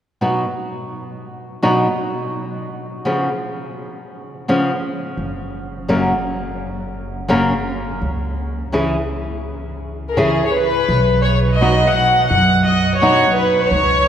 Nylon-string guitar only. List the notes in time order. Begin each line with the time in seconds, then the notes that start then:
0.21 B2 F#3 B3 D#4 F#4
1.62 B2 F#3 B3 D#4 F#4
3.05 C#3 F3 B3 C#4 G#4
4.48 C#3 F3 B3 C#4 G#4
5.88 F#2 C#3 F#3 A#3 C#4 A#4
7.28 F#2 C#3 F#3 A#3 C#4 A#4
8.72 C#3 E3 C#4 E4 G#4
10.17 C#3 E3 C#4 E4 G#4
11.61 B2 F#3 B3 D#4 F#4
13.01 B2 F#3 B3 D#4 F#4